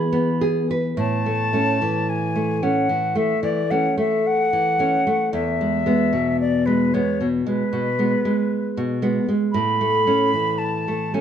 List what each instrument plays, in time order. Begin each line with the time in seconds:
Already playing: nylon-string guitar E3 G#4, flute B5
0.12 nylon-string guitar B3
0.41 nylon-string guitar G#4
0.71 nylon-string guitar B4
0.97 nylon-string guitar A2, flute A5
1.26 nylon-string guitar A3
1.53 nylon-string guitar A3 C#4
1.82 nylon-string guitar E3
2.09 flute G#5
2.36 nylon-string guitar A3
2.63 nylon-string guitar A3 C#4, flute F#5
2.89 nylon-string guitar E3
3.15 nylon-string guitar A3, flute E5
3.43 nylon-string guitar E3, flute D5
3.70 nylon-string guitar A3 C#4, flute F#5
3.98 nylon-string guitar A3, flute E5
4.27 flute F#5
4.53 nylon-string guitar E3
4.79 nylon-string guitar A3 C#4
5.07 nylon-string guitar A3
5.33 nylon-string guitar E2, flute E5
5.61 nylon-string guitar G#3
5.86 nylon-string guitar G#3 B3
6.13 nylon-string guitar B2
6.41 flute D5
6.66 nylon-string guitar G#3, flute B4
6.94 nylon-string guitar G#3 B3, flute C#5
7.21 nylon-string guitar B2
7.46 nylon-string guitar G#3, flute B4
7.73 nylon-string guitar B2
7.99 nylon-string guitar G#3 B3
8.25 nylon-string guitar G#3
8.77 nylon-string guitar B2
9.02 nylon-string guitar G#3 B3
9.28 nylon-string guitar G#3
9.52 nylon-string guitar A2, flute B5
9.81 nylon-string guitar A3
10.07 nylon-string guitar A3 C#4
10.34 nylon-string guitar E3
10.58 flute A5
10.88 nylon-string guitar A3
11.14 nylon-string guitar A3 C#4, flute G#5